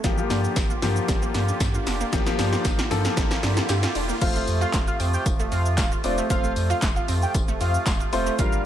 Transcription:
Already playing: riser
0.04 G1 D3 F3 G3 A#3 F4 G4, kick, snare, closed hi-hat, shaker
0.18 F3 A#3 G4, shaker
0.30 G2 D4, snare, open hi-hat, tambourine, shaker
0.44 shaker
0.56 G1 G4, kick, snare, closed hi-hat, tambourine, shaker
0.70 F4, shaker
0.82 G2 F3 A#3 G4, snare, open hi-hat, tambourine, shaker
0.96 shaker
1.08 G1 G3, kick, snare, closed hi-hat, tambourine, shaker
1.22 A#3, shaker
1.34 G2 D4, snare, open hi-hat, tambourine, shaker
1.48 shaker
1.60 G2 G4, kick, snare, closed hi-hat, tambourine, shaker
1.74 F4, shaker
1.87 F1 D4, snare, open hi-hat, tambourine, shaker
2.01 A#3, shaker
2.13 G1 F3 G3 A#3 G4, kick, snare, closed hi-hat, tambourine, shaker
2.26 F3 A#3 G4, snare, shaker
2.39 G2 D4, snare, open hi-hat, tambourine, shaker
2.53 snare, shaker
2.65 G1 G4, kick, snare, closed hi-hat, tambourine, shaker
2.79 F4, snare, shaker
2.91 G2 F3 A#3 A4, snare, open hi-hat, tambourine, shaker
3.05 snare, shaker
3.17 G1 G3, kick, snare, closed hi-hat, tambourine, shaker
3.31 A#3, snare, shaker
3.43 G2 D4, snare, open hi-hat, shaker
3.57 snare, shaker
3.69 G2 G4, snare, closed hi-hat, tambourine, shaker
3.83 F4, snare, shaker
3.95 E1 D4, open hi-hat, tambourine, shaker
4.09 A#3, shaker
4.21 F1 C3 F3 A3 C4 F4 C5 F5, kick, closed hi-hat, crash, tambourine, shaker
4.35 F1 A3, shaker
4.48 F2, open hi-hat, tambourine, shaker
4.61 F4 F5, shaker
4.74 F1 F5, kick, snare, clap, closed hi-hat, tambourine, shaker
4.87 F4 F5, shaker
5.00 F2 C4, open hi-hat, tambourine, shaker
5.14 G5, shaker
5.26 F1 F3, kick, closed hi-hat, tambourine, shaker
5.40 F1 A3, shaker
5.52 F2 C4 F5, open hi-hat, shaker
5.66 shaker
5.78 D1 F5, kick, snare, clap, closed hi-hat, tambourine, shaker
5.92 F4, shaker
6.04 E1 A3 C4 F4 C5 D5, open hi-hat, tambourine, shaker
6.18 A3, shaker
6.30 F1 F3 A3 C4 F4 C5 F5, kick, closed hi-hat, tambourine, shaker
6.44 F1 A3, shaker
6.56 F2, open hi-hat, tambourine, shaker
6.70 F4 F5, shaker
6.82 F1 F5, kick, snare, clap, closed hi-hat, tambourine, shaker
6.96 F4 F5, shaker
7.08 F2 C4, open hi-hat, tambourine, shaker
7.22 G5, shaker
7.34 F1 F3, kick, closed hi-hat, tambourine, shaker
7.48 F1 A3, shaker
7.60 F2 C4 F5, open hi-hat, shaker
7.74 shaker
7.86 E1 F5, kick, snare, clap, closed hi-hat, tambourine, shaker
8.00 F4, shaker
8.12 F1 A3 C4 F4 C5, open hi-hat, tambourine, shaker
8.26 A3, shaker
8.39 G1 D3 G3 A#3 D4 F4 A#4 F5, kick, closed hi-hat, tambourine, shaker
8.53 G1 A#3, shaker

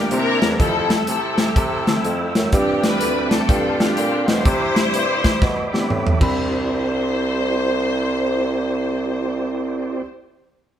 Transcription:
Already playing: G3 F4 G4 A#4 F5 G5 D6
0.11 C3 A#3 C4 D4 E4 G4 A#4 C5 E5 A#5, closed hi-hat
0.42 E2, snare, closed hi-hat
0.59 F2 F3 A3 C4 E4 G4 A4 E5 G5 E6, kick, closed hi-hat
0.90 snare, closed hi-hat
1.07 C3 C4 E4 A4, closed hi-hat
1.38 snare, closed hi-hat
1.47 G4
1.56 C3 C4 E4 A4, kick, closed hi-hat
1.87 F3 A3 C4 E4 A4, snare, closed hi-hat
2.05 F2, closed hi-hat
2.35 F#2, snare, closed hi-hat
2.52 G2 G3 C4 D4 F4 G4 D6, kick, closed hi-hat
2.84 D4 F4 B4, snare, closed hi-hat
3.01 D2, closed hi-hat
3.31 C4 F4 A4, snare, closed hi-hat
3.48 G2 A3 C4 D4 F4 G4 A4 F5 C6, kick, closed hi-hat
3.80 A3 C4 D4 F4 F#4 G4, snare, closed hi-hat
3.86 G4
3.97 A#2, closed hi-hat
4.28 B2 E4 G4 C5, snare, closed hi-hat
4.45 C3 G3 C4 D4 E4 G4 D5 E5 B5 D6, kick, closed hi-hat
4.76 snare, closed hi-hat
4.94 G2, closed hi-hat
5.24 kick, snare, closed hi-hat
5.42 B2, kick, snare
5.73 B3 C4 D4 E4 G4, snare
5.90 A2, mid tom
6.07 floor tom
6.19 C2 C4 D4 E4 G4 C5 D5, kick, crash
6.23 B5

